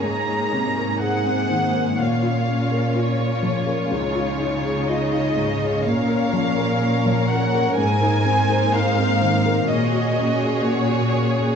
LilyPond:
<<
  \new Staff \with { instrumentName = "Violin section" } { \time 4/4 \key bes \minor \tempo 4 = 62 bes''4 ges''4 f''4 des''4 | des''4 ees''4 f''4. ges''8 | aes''4 f''4 ees''4 des''4 | }
  \new Staff \with { instrumentName = "Violin section" } { \time 4/4 \key bes \minor << { des''4 c''4 des''2~ | des''1 | c''2 des''2 | } \\ { aes'2 f'2~ | f'2 bes'2~ | bes'2 aes'2 | } >> }
  \new Staff \with { instrumentName = "Felt piano" } { \time 4/4 \key bes \minor aes,16 aes'16 c16 bes'16 aes'16 c'16 ees16 bes'16 bes,16 f'16 des'16 bes'16 f'16 des'16 f16 bes'16 | des,16 f'16 ees'16 aes'16 f'16 ees'16 aes,16 aes'16 bes,16 des'16 f16 bes'16 des'16 f16 des'16 bes'16 | aes,16 ees'16 c'16 bes'16 ees'16 c'16 ees16 bes'16 bes,16 ges'16 des'16 aes'16 ges'16 des'16 bes16 aes'16 | }
  \new Staff \with { instrumentName = "Viola section" } { \time 4/4 \key bes \minor << { ees'2 des'2 | ees'2 des'2 | ees'2 ges'2 | } \\ { bes1 | aes2 bes2~ | bes1 | } >> }
  \new Staff \with { instrumentName = "Cello section" } { \clef bass \time 4/4 \key bes \minor aes,2 bes,2 | des2 bes,2 | aes,2 bes,2 | }
>>